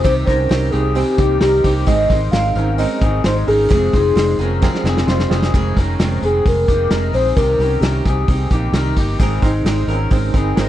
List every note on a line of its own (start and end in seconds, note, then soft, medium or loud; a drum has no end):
0.04 0.23 C2 loud
0.04 0.27 C3 medium
0.04 0.28 D#3 medium
0.04 0.25 C4 medium
0.04 0.28 C4 medium
0.04 0.26 D#4 medium
0.04 0.26 D#4 loud
0.04 0.26 G4 medium
0.04 0.25 G4 loud
0.04 0.15 C5 loud
0.04 0.26 C5 loud
0.04 kick loud
0.04 hi-hat pedal medium
0.04 open hi-hat medium
0.26 0.46 C2 loud
0.26 0.48 C4 medium
0.26 0.49 C4 soft
0.26 0.71 C#4 medium
0.26 0.49 D#4 medium
0.26 0.51 D#4 medium
0.26 0.50 G4 medium
0.26 0.48 G4 medium
0.26 0.70 A#4 medium
0.26 0.72 C5 loud
0.26 0.49 C5 medium
0.26 kick medium
0.26 snare soft
0.26 hi-hat pedal medium
0.26 open hi-hat medium
0.49 0.69 C2 loud
0.49 0.73 D#3 medium
0.49 0.73 C4 medium
0.49 0.72 C4 medium
0.49 0.72 D#4 medium
0.49 0.72 G4 medium
0.49 0.71 G4 medium
0.49 0.73 C5 medium
0.49 snare loud
0.49 hi-hat pedal medium
0.49 open hi-hat loud
0.71 1.02 C2 loud
0.71 0.95 C4 medium
0.71 0.96 D#4 medium
0.71 0.94 D#4 medium
0.71 0.96 G4 medium
0.71 0.95 G#4 medium
0.71 1.16 G#4 medium
0.71 hi-hat pedal medium
0.71 open hi-hat medium
0.75 0.95 C4 soft
0.75 0.94 G4 medium
0.75 0.95 A#4 medium
0.95 1.19 C3 medium
0.95 1.19 D#3 medium
0.95 1.17 C4 loud
0.95 1.19 C4 medium
0.95 1.17 D#4 loud
0.95 1.19 D#4 medium
0.95 1.38 G4 loud
0.95 1.17 G4 medium
0.95 1.17 C5 loud
0.95 hi-hat pedal medium
0.95 open hi-hat loud
1.18 1.37 C2 loud
1.18 1.42 A#3 medium
1.18 1.40 C4 medium
1.18 1.42 C4 soft
1.18 1.40 D#4 medium
1.18 1.43 D#4 medium
1.18 1.42 G4 medium
1.18 1.40 G4 medium
1.18 1.40 C5 medium
1.18 kick loud
1.18 hi-hat pedal medium
1.18 open hi-hat medium
1.41 1.61 C2 loud
1.41 1.65 D#3 medium
1.41 1.63 C4 medium
1.41 1.65 C4 medium
1.41 1.63 D#4 medium
1.41 1.65 D#4 medium
1.41 1.74 G4 medium
1.41 1.63 G4 medium
1.41 1.64 A#4 medium
1.41 1.63 C5 medium
1.41 snare loud
1.41 hi-hat pedal medium
1.41 open hi-hat loud
1.64 1.83 C2 loud
1.64 1.87 A#3 medium
1.64 1.85 C4 medium
1.64 1.86 D#4 medium
1.64 1.87 D#4 medium
1.64 1.88 G4 medium
1.64 1.86 G4 medium
1.64 1.86 C5 medium
1.64 kick medium
1.64 hi-hat pedal medium
1.64 open hi-hat medium
1.68 1.87 C4 soft
1.86 2.06 G#1 loud
1.86 2.10 G#3 medium
1.86 2.08 C4 medium
1.86 2.10 C4 loud
1.86 2.09 D#4 medium
1.86 2.09 D#4 loud
1.86 2.10 G#4 loud
1.86 2.09 G#4 medium
1.86 2.09 A#4 loud
1.86 2.07 A#4 loud
1.86 2.30 D#5 loud
1.86 kick loud
1.86 hi-hat pedal medium
1.86 open hi-hat medium
2.08 2.29 G#1 loud
2.08 2.31 C4 medium
2.08 2.33 C4 medium
2.08 2.33 D#4 medium
2.08 2.32 D#4 medium
2.08 2.32 G#4 medium
2.08 2.33 A#4 medium
2.08 2.32 A#4 medium
2.08 2.54 C5 medium
2.08 kick medium
2.08 snare soft
2.08 hi-hat pedal medium
2.08 open hi-hat medium
2.31 2.52 G#1 loud
2.31 2.56 G#3 medium
2.31 2.55 C4 medium
2.31 2.57 C4 medium
2.31 2.55 D#4 medium
2.31 2.56 D#4 medium
2.31 2.55 G#4 medium
2.31 2.55 A#4 medium
2.31 2.54 A#4 medium
2.31 2.75 F5 loud
2.31 snare loud
2.31 hi-hat pedal medium
2.31 open hi-hat loud
2.55 2.84 G#1 loud
2.55 2.77 C4 medium
2.55 2.78 C4 soft
2.55 3.00 C#4 medium
2.55 2.78 D#4 medium
2.55 2.79 D#4 medium
2.55 2.78 G#4 medium
2.55 2.79 A#4 medium
2.55 2.78 C5 medium
2.55 hi-hat pedal medium
2.55 open hi-hat medium
2.78 3.02 G#3 medium
2.78 3.00 C4 loud
2.78 3.02 C4 medium
2.78 3.00 D#4 loud
2.78 3.02 D#4 medium
2.78 3.00 G#4 loud
2.78 3.01 A#4 loud
2.78 3.00 A#4 medium
2.78 3.22 D#5 loud
2.78 hi-hat pedal medium
2.78 open hi-hat loud
3.01 3.21 G#1 loud
3.01 3.23 C4 medium
3.01 3.25 C4 soft
3.01 3.23 D#4 medium
3.01 3.26 D#4 medium
3.01 3.25 G#4 medium
3.01 3.23 G#4 medium
3.01 3.25 A#4 medium
3.01 3.24 A#4 medium
3.01 kick loud
3.01 hi-hat pedal medium
3.01 open hi-hat medium
3.24 3.44 G#1 loud
3.24 3.48 G#3 medium
3.24 3.46 C4 medium
3.24 3.49 C4 medium
3.24 3.46 D#4 medium
3.24 3.48 D#4 medium
3.24 3.46 G#4 medium
3.24 3.46 A#4 medium
3.24 3.47 A#4 medium
3.24 3.47 C5 medium
3.24 3.36 C5 loud
3.24 snare loud
3.24 hi-hat pedal medium
3.24 open hi-hat loud
3.47 3.67 G#1 loud
3.47 3.69 C4 medium
3.47 3.70 C4 soft
3.47 3.71 C#4 medium
3.47 3.69 D#4 medium
3.47 3.71 D#4 medium
3.47 5.04 G#4 loud
3.47 3.69 G#4 medium
3.47 3.71 A#4 medium
3.47 3.69 A#4 medium
3.47 hi-hat pedal medium
3.47 open hi-hat medium
3.69 3.90 F1 loud
3.69 3.93 F2 medium
3.69 3.93 C3 medium
3.69 3.94 F3 loud
3.69 3.94 G#3 loud
3.69 3.92 C4 loud
3.69 3.93 C4 loud
3.69 3.92 F4 medium
3.69 3.92 G#4 medium
3.69 3.92 G#4 loud
3.69 3.92 C5 loud
3.69 kick loud
3.69 hi-hat pedal medium
3.69 open hi-hat medium
3.93 4.12 F1 loud
3.93 4.14 F3 soft
3.93 4.16 G#3 medium
3.93 4.15 C4 medium
3.93 4.17 C4 medium
3.93 4.37 D#4 medium
3.93 4.15 F4 medium
3.93 4.16 G#4 medium
3.93 4.15 G#4 medium
3.93 4.15 C5 medium
3.93 4.37 C5 medium
3.93 kick medium
3.93 snare soft
3.93 hi-hat pedal medium
3.93 open hi-hat medium
4.15 4.35 F1 loud
4.15 4.39 F3 medium
4.15 4.40 G#3 medium
4.15 4.37 C4 loud
4.15 4.39 C4 medium
4.15 4.38 F4 medium
4.15 4.38 G#4 medium
4.15 4.38 D#5 loud
4.15 snare loud
4.15 hi-hat pedal medium
4.15 open hi-hat loud
4.38 4.67 F1 loud
4.38 4.62 F3 medium
4.38 4.62 G#3 medium
4.38 4.61 C4 loud
4.38 4.63 C4 medium
4.38 4.83 C#4 medium
4.38 4.61 F4 medium
4.38 4.62 G#4 medium
4.38 4.61 G#4 medium
4.38 4.83 A#4 medium
4.38 4.61 A#4 loud
4.38 hi-hat pedal medium
4.38 open hi-hat medium
4.62 4.85 F2 medium
4.62 4.85 C3 medium
4.62 4.86 F3 medium
4.62 4.86 G#3 loud
4.62 4.83 C4 loud
4.62 4.86 C4 loud
4.62 4.83 F4 loud
4.62 4.84 G#4 loud
4.62 4.84 A#4 loud
4.62 kick loud
4.62 snare medium
4.75 snare medium
4.84 5.03 F1 loud
4.84 5.08 G#3 medium
4.84 5.06 C4 loud
4.84 5.09 C4 medium
4.84 5.06 F4 medium
4.84 5.08 G#4 medium
4.84 5.06 G#4 medium
4.84 5.07 C5 loud
4.84 snare medium
4.88 5.07 F3 medium
4.97 snare medium
5.07 5.27 F1 loud
5.07 5.31 F3 medium
5.07 5.32 G#3 medium
5.07 5.29 C4 medium
5.07 5.31 C4 medium
5.07 5.29 F4 medium
5.07 5.31 F4 medium
5.07 5.29 G#4 medium
5.07 5.30 G#4 medium
5.07 5.31 C5 medium
5.07 5.29 D#5 loud
5.07 snare medium
5.19 snare medium
5.30 5.50 F1 loud
5.30 5.54 G#3 medium
5.30 5.52 C4 loud
5.30 5.54 C4 medium
5.30 5.52 F4 medium
5.30 5.52 G#4 medium
5.30 5.54 G#4 medium
5.30 5.52 C5 loud
5.30 snare loud
5.34 5.54 F3 medium
5.42 snare loud
5.54 5.73 F1 loud
5.54 5.77 F2 medium
5.54 5.77 C3 medium
5.54 5.77 D#3 loud
5.54 5.78 G#3 loud
5.54 5.78 C4 loud
5.54 5.77 G#4 loud
5.54 kick loud
5.54 open hi-hat medium
5.76 5.95 F1 loud
5.76 6.00 G#3 medium
5.76 6.01 C4 medium
5.76 6.21 C#4 medium
5.76 6.00 G#4 medium
5.76 6.20 A#4 medium
5.76 kick medium
5.76 snare soft
5.76 hi-hat pedal medium
5.76 open hi-hat medium
5.81 6.00 D#3 medium
5.99 6.18 F1 loud
5.99 6.23 F2 medium
5.99 6.23 C3 loud
5.99 6.23 D#3 medium
5.99 6.23 G#3 loud
5.99 6.24 C4 loud
5.99 6.22 G#4 medium
5.99 snare loud
5.99 hi-hat pedal medium
5.99 open hi-hat loud
6.22 6.41 F1 loud
6.22 6.46 D#3 soft
6.22 6.46 G#3 soft
6.22 6.47 C4 medium
6.22 6.46 G#4 medium
6.22 6.45 G#4 medium
6.22 hi-hat pedal medium
6.22 open hi-hat medium
6.45 6.64 F1 loud
6.45 6.69 D#3 medium
6.45 6.69 G#3 medium
6.45 6.69 C4 medium
6.45 7.11 A#4 loud
6.45 kick loud
6.45 hi-hat pedal medium
6.45 open hi-hat loud
6.49 6.68 G#4 medium
6.68 6.87 F1 medium
6.68 6.90 D#3 soft
6.68 6.91 G#3 medium
6.68 6.92 A#3 medium
6.68 6.92 C4 medium
6.68 6.91 G4 medium
6.68 6.91 G#4 medium
6.68 kick medium
6.68 hi-hat pedal medium
6.68 open hi-hat medium
6.91 7.10 F1 loud
6.91 7.14 F2 medium
6.91 7.14 C3 medium
6.91 7.14 D#3 medium
6.91 7.15 G#3 medium
6.91 7.14 C4 medium
6.91 7.14 D#4 medium
6.91 7.12 G#4 medium
6.91 7.14 A#4 medium
6.91 snare loud
6.91 hi-hat pedal medium
6.91 open hi-hat loud
7.13 7.32 A#1 medium
7.13 7.36 D#3 soft
7.13 7.38 G#3 soft
7.13 7.37 C4 soft
7.13 7.37 G#4 medium
7.13 7.35 C5 loud
7.13 hi-hat pedal medium
7.13 open hi-hat medium
7.36 7.55 C2 loud
7.36 7.60 C3 medium
7.36 7.60 D#3 medium
7.36 7.60 C4 medium
7.36 7.60 D#4 medium
7.36 7.58 G4 medium
7.36 7.83 A#4 loud
7.36 kick loud
7.36 hi-hat pedal medium
7.36 open hi-hat medium
7.59 7.78 C2 loud
7.59 7.82 C4 medium
7.59 8.04 C#4 medium
7.59 7.83 D#4 soft
7.59 7.82 G4 medium
7.59 8.03 A#4 medium
7.59 snare soft
7.59 hi-hat pedal medium
7.59 open hi-hat medium
7.81 8.00 C2 loud
7.81 8.05 C3 medium
7.81 8.05 D#3 medium
7.81 8.06 C4 medium
7.81 8.06 D#4 medium
7.81 8.28 G4 medium
7.81 8.04 G4 medium
7.81 snare loud
7.81 hi-hat pedal medium
7.81 open hi-hat loud
8.05 8.24 C2 loud
8.05 8.29 D#4 soft
8.05 8.28 G4 medium
8.05 8.49 G#4 medium
8.05 kick loud
8.05 hi-hat pedal medium
8.05 open hi-hat medium
8.09 8.28 C4 soft
8.28 8.47 C2 loud
8.28 8.51 D#3 medium
8.28 8.52 C4 medium
8.28 8.52 D#4 medium
8.28 8.50 G4 medium
8.28 kick medium
8.28 hi-hat pedal medium
8.28 open hi-hat loud
8.50 8.70 A#1 medium
8.50 8.75 A#3 medium
8.50 8.74 D#4 medium
8.50 8.74 G4 medium
8.50 kick loud
8.50 hi-hat pedal medium
8.50 open hi-hat medium
8.54 8.74 C4 medium
8.72 8.92 C2 loud
8.72 8.97 C3 medium
8.72 8.97 D#3 medium
8.72 8.98 C4 loud
8.72 8.96 D#4 medium
8.72 8.97 A#4 medium
8.72 snare loud
8.72 hi-hat pedal medium
8.72 open hi-hat loud
8.77 8.95 G4 loud
8.96 9.15 G1 medium
8.96 9.20 A#3 medium
8.96 9.19 C4 soft
8.96 9.20 D#4 medium
8.96 9.19 G4 medium
8.96 kick medium
8.96 hi-hat pedal medium
8.96 open hi-hat medium
9.19 9.38 G#1 loud
9.19 9.43 G#3 loud
9.19 9.41 C4 loud
9.19 9.43 C4 loud
9.19 9.41 D#4 loud
9.19 9.43 D#4 loud
9.19 9.42 G#4 loud
9.19 9.41 G#4 loud
9.19 9.41 A#4 loud
9.19 kick loud
9.19 hi-hat pedal medium
9.19 open hi-hat medium
9.42 9.61 G#1 loud
9.42 9.63 C4 loud
9.42 9.65 C4 soft
9.42 9.63 D#4 loud
9.42 9.66 D#4 medium
9.42 9.64 G#4 loud
9.42 9.65 A#4 medium
9.42 9.64 A#4 loud
9.42 9.85 C5 medium
9.42 kick medium
9.42 snare soft
9.42 hi-hat pedal medium
9.42 open hi-hat medium
9.64 9.83 G#1 loud
9.64 9.89 G#3 medium
9.64 9.86 C4 medium
9.64 9.89 C4 loud
9.64 9.86 D#4 medium
9.64 9.89 D#4 loud
9.64 9.87 G#4 medium
9.64 9.87 A#4 loud
9.64 9.87 C5 loud
9.64 snare loud
9.64 hi-hat pedal medium
9.64 open hi-hat medium
9.87 10.06 G#1 loud
9.87 10.10 C4 medium
9.87 10.32 C#4 medium
9.87 10.10 D#4 medium
9.87 10.12 D#4 medium
9.87 10.10 G#4 medium
9.87 10.11 A#4 medium
9.87 10.10 A#4 loud
9.87 hi-hat pedal medium
9.87 open hi-hat medium
9.92 10.11 C4 soft
10.11 10.30 G#1 loud
10.11 10.34 G#3 medium
10.11 10.32 C4 loud
10.11 10.34 C4 medium
10.11 10.32 D#4 medium
10.11 10.34 D#4 medium
10.11 10.33 G#4 medium
10.11 10.33 A#4 medium
10.11 10.33 C5 loud
10.11 kick loud
10.11 hi-hat pedal medium
10.11 open hi-hat loud
10.34 10.52 G1 medium
10.34 10.55 C4 medium
10.34 10.57 C4 soft
10.34 10.55 D#4 medium
10.34 10.58 D#4 medium
10.34 10.56 G#4 medium
10.34 10.55 G#4 medium
10.34 10.57 A#4 medium
10.34 10.55 A#4 loud
10.34 kick loud
10.34 hi-hat pedal medium
10.34 open hi-hat medium
10.56 10.69 G#1 medium
10.56 10.69 G#3 medium
10.56 10.69 C4 loud
10.56 10.69 C4 medium
10.56 10.69 D#4 loud
10.56 10.69 D#4 medium
10.56 10.69 G#4 loud
10.56 10.69 A#4 loud
10.56 10.69 C5 loud
10.56 snare loud
10.56 hi-hat pedal medium
10.56 open hi-hat loud